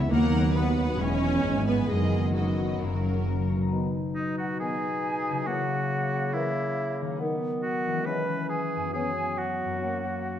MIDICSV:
0, 0, Header, 1, 12, 480
1, 0, Start_track
1, 0, Key_signature, 5, "major"
1, 0, Tempo, 452148
1, 116, Time_signature, 4, 2, 24, 8
1, 3959, Tempo, 433526
1, 8759, Tempo, 443787
1, 11279, End_track
2, 0, Start_track
2, 0, Title_t, "Flute"
2, 0, Program_c, 0, 73
2, 4451, Note_on_c, 0, 75, 43
2, 4675, Note_off_c, 0, 75, 0
2, 4690, Note_on_c, 0, 78, 41
2, 4757, Note_off_c, 0, 78, 0
2, 4934, Note_on_c, 0, 80, 60
2, 5897, Note_on_c, 0, 78, 49
2, 5914, Note_off_c, 0, 80, 0
2, 6837, Note_off_c, 0, 78, 0
2, 6844, Note_on_c, 0, 76, 58
2, 7546, Note_off_c, 0, 76, 0
2, 8276, Note_on_c, 0, 78, 51
2, 8723, Note_off_c, 0, 78, 0
2, 8750, Note_on_c, 0, 83, 54
2, 9226, Note_on_c, 0, 80, 49
2, 9242, Note_off_c, 0, 83, 0
2, 9701, Note_off_c, 0, 80, 0
2, 9707, Note_on_c, 0, 80, 49
2, 10182, Note_on_c, 0, 78, 38
2, 10198, Note_off_c, 0, 80, 0
2, 11279, Note_off_c, 0, 78, 0
2, 11279, End_track
3, 0, Start_track
3, 0, Title_t, "Violin section"
3, 0, Program_c, 1, 48
3, 17, Note_on_c, 1, 76, 49
3, 125, Note_off_c, 1, 76, 0
3, 137, Note_on_c, 1, 78, 59
3, 566, Note_off_c, 1, 78, 0
3, 606, Note_on_c, 1, 78, 51
3, 1061, Note_off_c, 1, 78, 0
3, 1075, Note_on_c, 1, 80, 50
3, 2026, Note_on_c, 1, 75, 43
3, 2027, Note_off_c, 1, 80, 0
3, 2491, Note_off_c, 1, 75, 0
3, 2504, Note_on_c, 1, 75, 42
3, 2980, Note_off_c, 1, 75, 0
3, 2995, Note_on_c, 1, 70, 43
3, 3744, Note_off_c, 1, 70, 0
3, 11279, End_track
4, 0, Start_track
4, 0, Title_t, "Violin section"
4, 0, Program_c, 2, 48
4, 124, Note_on_c, 2, 70, 78
4, 559, Note_off_c, 2, 70, 0
4, 593, Note_on_c, 2, 71, 65
4, 1064, Note_off_c, 2, 71, 0
4, 1074, Note_on_c, 2, 73, 74
4, 1781, Note_on_c, 2, 71, 57
4, 1783, Note_off_c, 2, 73, 0
4, 2014, Note_on_c, 2, 68, 60
4, 2017, Note_off_c, 2, 71, 0
4, 2500, Note_on_c, 2, 66, 42
4, 2505, Note_off_c, 2, 68, 0
4, 3454, Note_off_c, 2, 66, 0
4, 11279, End_track
5, 0, Start_track
5, 0, Title_t, "Oboe"
5, 0, Program_c, 3, 68
5, 4426, Note_on_c, 3, 63, 52
5, 4662, Note_off_c, 3, 63, 0
5, 4674, Note_on_c, 3, 66, 46
5, 4912, Note_off_c, 3, 66, 0
5, 4919, Note_on_c, 3, 68, 62
5, 5882, Note_on_c, 3, 66, 52
5, 5899, Note_off_c, 3, 68, 0
5, 6839, Note_on_c, 3, 64, 56
5, 6855, Note_off_c, 3, 66, 0
5, 7558, Note_off_c, 3, 64, 0
5, 8273, Note_on_c, 3, 66, 61
5, 8750, Note_on_c, 3, 71, 58
5, 8767, Note_off_c, 3, 66, 0
5, 9216, Note_off_c, 3, 71, 0
5, 9222, Note_on_c, 3, 68, 54
5, 9691, Note_off_c, 3, 68, 0
5, 9698, Note_on_c, 3, 68, 60
5, 10186, Note_on_c, 3, 66, 46
5, 10202, Note_off_c, 3, 68, 0
5, 11279, Note_off_c, 3, 66, 0
5, 11279, End_track
6, 0, Start_track
6, 0, Title_t, "Harp"
6, 0, Program_c, 4, 46
6, 0, Note_on_c, 4, 49, 57
6, 0, Note_on_c, 4, 56, 48
6, 0, Note_on_c, 4, 61, 44
6, 0, Note_on_c, 4, 64, 52
6, 0, Note_on_c, 4, 68, 50
6, 0, Note_on_c, 4, 71, 46
6, 0, Note_on_c, 4, 76, 61
6, 0, Note_on_c, 4, 83, 56
6, 104, Note_on_c, 4, 51, 58
6, 128, Note_off_c, 4, 49, 0
6, 130, Note_off_c, 4, 56, 0
6, 130, Note_off_c, 4, 61, 0
6, 131, Note_off_c, 4, 76, 0
6, 133, Note_off_c, 4, 68, 0
6, 137, Note_off_c, 4, 64, 0
6, 230, Note_on_c, 4, 63, 43
6, 343, Note_on_c, 4, 54, 46
6, 465, Note_on_c, 4, 66, 43
6, 576, Note_off_c, 4, 71, 0
6, 588, Note_on_c, 4, 71, 47
6, 687, Note_off_c, 4, 66, 0
6, 700, Note_on_c, 4, 66, 45
6, 824, Note_on_c, 4, 78, 45
6, 925, Note_off_c, 4, 83, 0
6, 938, Note_on_c, 4, 83, 50
6, 1057, Note_on_c, 4, 52, 58
6, 1074, Note_off_c, 4, 51, 0
6, 1076, Note_off_c, 4, 54, 0
6, 1077, Note_off_c, 4, 66, 0
6, 1078, Note_off_c, 4, 63, 0
6, 1080, Note_off_c, 4, 78, 0
6, 1182, Note_on_c, 4, 56, 41
6, 1298, Note_on_c, 4, 64, 42
6, 1405, Note_off_c, 4, 71, 0
6, 1417, Note_on_c, 4, 71, 39
6, 1541, Note_on_c, 4, 68, 44
6, 1660, Note_on_c, 4, 76, 38
6, 1758, Note_off_c, 4, 83, 0
6, 1771, Note_on_c, 4, 83, 42
6, 1897, Note_on_c, 4, 80, 46
6, 2016, Note_on_c, 4, 42, 47
6, 2037, Note_off_c, 4, 52, 0
6, 2039, Note_off_c, 4, 64, 0
6, 2039, Note_off_c, 4, 80, 0
6, 2041, Note_off_c, 4, 56, 0
6, 2041, Note_off_c, 4, 76, 0
6, 2042, Note_off_c, 4, 68, 0
6, 2134, Note_on_c, 4, 51, 36
6, 2261, Note_on_c, 4, 54, 38
6, 2383, Note_on_c, 4, 63, 34
6, 2485, Note_off_c, 4, 71, 0
6, 2497, Note_on_c, 4, 71, 41
6, 2619, Note_on_c, 4, 66, 40
6, 2746, Note_on_c, 4, 75, 36
6, 2853, Note_off_c, 4, 83, 0
6, 2866, Note_on_c, 4, 83, 41
6, 2973, Note_off_c, 4, 42, 0
6, 2986, Note_on_c, 4, 42, 50
6, 3006, Note_off_c, 4, 71, 0
6, 3007, Note_off_c, 4, 51, 0
6, 3009, Note_off_c, 4, 63, 0
6, 3009, Note_off_c, 4, 75, 0
6, 3009, Note_off_c, 4, 83, 0
6, 3101, Note_on_c, 4, 49, 33
6, 3215, Note_off_c, 4, 54, 0
6, 3228, Note_on_c, 4, 54, 37
6, 3348, Note_on_c, 4, 61, 37
6, 3472, Note_on_c, 4, 70, 38
6, 3582, Note_off_c, 4, 66, 0
6, 3595, Note_on_c, 4, 66, 33
6, 3711, Note_on_c, 4, 73, 38
6, 3765, Note_on_c, 4, 47, 32
6, 3797, Note_off_c, 4, 54, 0
6, 3810, Note_on_c, 4, 54, 25
6, 3833, Note_on_c, 4, 82, 38
6, 3859, Note_on_c, 4, 63, 26
6, 3907, Note_on_c, 4, 71, 25
6, 3971, Note_off_c, 4, 49, 0
6, 3973, Note_off_c, 4, 61, 0
6, 3973, Note_off_c, 4, 73, 0
6, 3974, Note_off_c, 4, 42, 0
6, 3974, Note_off_c, 4, 70, 0
6, 3974, Note_off_c, 4, 82, 0
6, 5692, Note_on_c, 4, 49, 35
6, 5728, Note_off_c, 4, 54, 0
6, 5741, Note_on_c, 4, 54, 29
6, 5793, Note_on_c, 4, 64, 32
6, 5811, Note_off_c, 4, 47, 0
6, 5844, Note_on_c, 4, 70, 30
6, 5860, Note_off_c, 4, 63, 0
6, 5885, Note_off_c, 4, 71, 0
6, 7595, Note_on_c, 4, 51, 38
6, 7635, Note_off_c, 4, 54, 0
6, 7648, Note_on_c, 4, 54, 32
6, 7697, Note_on_c, 4, 63, 33
6, 7718, Note_off_c, 4, 49, 0
6, 7746, Note_on_c, 4, 71, 35
6, 7769, Note_off_c, 4, 64, 0
6, 7794, Note_off_c, 4, 70, 0
6, 7817, Note_off_c, 4, 66, 0
6, 8548, Note_on_c, 4, 52, 46
6, 8595, Note_on_c, 4, 56, 34
6, 8645, Note_on_c, 4, 61, 34
6, 8674, Note_off_c, 4, 51, 0
6, 8695, Note_on_c, 4, 68, 38
6, 8701, Note_off_c, 4, 54, 0
6, 8725, Note_off_c, 4, 63, 0
6, 9513, Note_on_c, 4, 42, 34
6, 9560, Note_on_c, 4, 59, 28
6, 9593, Note_off_c, 4, 61, 0
6, 9606, Note_on_c, 4, 61, 28
6, 9628, Note_off_c, 4, 52, 0
6, 9650, Note_off_c, 4, 56, 0
6, 9655, Note_on_c, 4, 66, 27
6, 9699, Note_off_c, 4, 68, 0
6, 10460, Note_off_c, 4, 42, 0
6, 10473, Note_on_c, 4, 42, 38
6, 10519, Note_on_c, 4, 58, 30
6, 10555, Note_off_c, 4, 61, 0
6, 10568, Note_on_c, 4, 61, 31
6, 10603, Note_off_c, 4, 66, 0
6, 10616, Note_off_c, 4, 59, 0
6, 10616, Note_on_c, 4, 66, 33
6, 10665, Note_off_c, 4, 71, 0
6, 11279, Note_off_c, 4, 42, 0
6, 11279, Note_off_c, 4, 58, 0
6, 11279, Note_off_c, 4, 61, 0
6, 11279, Note_off_c, 4, 66, 0
6, 11279, End_track
7, 0, Start_track
7, 0, Title_t, "Clarinet"
7, 0, Program_c, 5, 71
7, 3949, Note_on_c, 5, 63, 38
7, 5884, Note_on_c, 5, 58, 47
7, 5900, Note_off_c, 5, 63, 0
7, 7802, Note_on_c, 5, 59, 45
7, 7818, Note_off_c, 5, 58, 0
7, 8758, Note_on_c, 5, 61, 44
7, 8774, Note_off_c, 5, 59, 0
7, 9705, Note_off_c, 5, 61, 0
7, 9711, Note_on_c, 5, 59, 37
7, 10672, Note_on_c, 5, 58, 37
7, 10688, Note_off_c, 5, 59, 0
7, 11279, Note_off_c, 5, 58, 0
7, 11279, End_track
8, 0, Start_track
8, 0, Title_t, "Viola section"
8, 0, Program_c, 6, 48
8, 109, Note_on_c, 6, 58, 89
8, 551, Note_off_c, 6, 58, 0
8, 584, Note_on_c, 6, 59, 70
8, 1058, Note_on_c, 6, 61, 85
8, 1059, Note_off_c, 6, 59, 0
8, 1775, Note_off_c, 6, 61, 0
8, 1775, Note_on_c, 6, 59, 67
8, 2014, Note_off_c, 6, 59, 0
8, 2025, Note_on_c, 6, 56, 68
8, 2509, Note_on_c, 6, 54, 50
8, 2510, Note_off_c, 6, 56, 0
8, 3478, Note_off_c, 6, 54, 0
8, 11279, End_track
9, 0, Start_track
9, 0, Title_t, "French horn section"
9, 0, Program_c, 7, 60
9, 0, Note_on_c, 7, 52, 55
9, 112, Note_off_c, 7, 52, 0
9, 116, Note_on_c, 7, 59, 59
9, 117, Note_on_c, 7, 54, 54
9, 567, Note_off_c, 7, 54, 0
9, 572, Note_off_c, 7, 59, 0
9, 580, Note_on_c, 7, 54, 52
9, 585, Note_on_c, 7, 59, 58
9, 1044, Note_off_c, 7, 59, 0
9, 1048, Note_off_c, 7, 54, 0
9, 1050, Note_on_c, 7, 56, 50
9, 1057, Note_on_c, 7, 59, 48
9, 1996, Note_off_c, 7, 59, 0
9, 2009, Note_on_c, 7, 51, 46
9, 2009, Note_on_c, 7, 59, 47
9, 2014, Note_off_c, 7, 56, 0
9, 2492, Note_off_c, 7, 51, 0
9, 2492, Note_off_c, 7, 59, 0
9, 2508, Note_on_c, 7, 51, 46
9, 2511, Note_on_c, 7, 59, 44
9, 2982, Note_off_c, 7, 51, 0
9, 2984, Note_off_c, 7, 59, 0
9, 2991, Note_on_c, 7, 49, 39
9, 2991, Note_on_c, 7, 58, 42
9, 3705, Note_off_c, 7, 49, 0
9, 3719, Note_off_c, 7, 58, 0
9, 3944, Note_on_c, 7, 51, 36
9, 3945, Note_on_c, 7, 59, 34
9, 4119, Note_off_c, 7, 51, 0
9, 4119, Note_off_c, 7, 59, 0
9, 4924, Note_on_c, 7, 59, 41
9, 4925, Note_on_c, 7, 51, 34
9, 5096, Note_off_c, 7, 51, 0
9, 5096, Note_off_c, 7, 59, 0
9, 5891, Note_on_c, 7, 58, 45
9, 5892, Note_on_c, 7, 52, 42
9, 6057, Note_off_c, 7, 58, 0
9, 6058, Note_off_c, 7, 52, 0
9, 6851, Note_on_c, 7, 58, 46
9, 6854, Note_on_c, 7, 52, 46
9, 7015, Note_off_c, 7, 58, 0
9, 7017, Note_off_c, 7, 52, 0
9, 7796, Note_on_c, 7, 59, 47
9, 7805, Note_on_c, 7, 51, 45
9, 7964, Note_off_c, 7, 59, 0
9, 7970, Note_off_c, 7, 51, 0
9, 8756, Note_on_c, 7, 61, 43
9, 8760, Note_on_c, 7, 56, 41
9, 8921, Note_off_c, 7, 61, 0
9, 8924, Note_off_c, 7, 56, 0
9, 9700, Note_on_c, 7, 61, 42
9, 9701, Note_on_c, 7, 59, 39
9, 9872, Note_off_c, 7, 61, 0
9, 9873, Note_off_c, 7, 59, 0
9, 10659, Note_on_c, 7, 61, 40
9, 10669, Note_on_c, 7, 58, 37
9, 10832, Note_off_c, 7, 61, 0
9, 10839, Note_off_c, 7, 58, 0
9, 11279, End_track
10, 0, Start_track
10, 0, Title_t, "Bassoon"
10, 0, Program_c, 8, 70
10, 3953, Note_on_c, 8, 47, 38
10, 5892, Note_on_c, 8, 49, 53
10, 5908, Note_off_c, 8, 47, 0
10, 7799, Note_off_c, 8, 49, 0
10, 7805, Note_on_c, 8, 51, 46
10, 8751, Note_on_c, 8, 52, 46
10, 8767, Note_off_c, 8, 51, 0
10, 9704, Note_on_c, 8, 54, 42
10, 9721, Note_off_c, 8, 52, 0
10, 11279, Note_off_c, 8, 54, 0
10, 11279, End_track
11, 0, Start_track
11, 0, Title_t, "Cello section"
11, 0, Program_c, 10, 48
11, 122, Note_on_c, 10, 39, 65
11, 1021, Note_off_c, 10, 39, 0
11, 1068, Note_on_c, 10, 40, 53
11, 1540, Note_off_c, 10, 40, 0
11, 1541, Note_on_c, 10, 44, 48
11, 2023, Note_off_c, 10, 44, 0
11, 2030, Note_on_c, 10, 42, 48
11, 2977, Note_off_c, 10, 42, 0
11, 3000, Note_on_c, 10, 42, 47
11, 3731, Note_off_c, 10, 42, 0
11, 11279, End_track
12, 0, Start_track
12, 0, Title_t, "Double bass section"
12, 0, Program_c, 11, 48
12, 115, Note_on_c, 11, 39, 64
12, 1018, Note_off_c, 11, 39, 0
12, 1059, Note_on_c, 11, 28, 56
12, 1532, Note_on_c, 11, 32, 48
12, 1535, Note_off_c, 11, 28, 0
12, 2016, Note_on_c, 11, 30, 48
12, 2018, Note_off_c, 11, 32, 0
12, 2970, Note_off_c, 11, 30, 0
12, 2984, Note_on_c, 11, 30, 49
12, 3723, Note_off_c, 11, 30, 0
12, 11279, End_track
0, 0, End_of_file